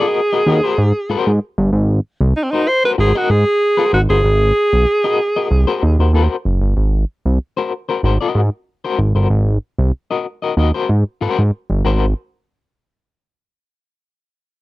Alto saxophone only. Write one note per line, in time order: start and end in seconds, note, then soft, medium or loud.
0.00 1.40 G#4 loud
2.37 2.45 D#4 medium
2.44 2.53 C4 medium
2.51 2.70 D#4 loud
2.68 2.84 C5 loud
2.85 2.91 B4 loud
3.00 3.19 G#4 loud
3.17 3.32 F#4 loud
3.31 3.93 G#4 loud
3.94 4.01 F#4 medium
4.10 6.10 G#4 loud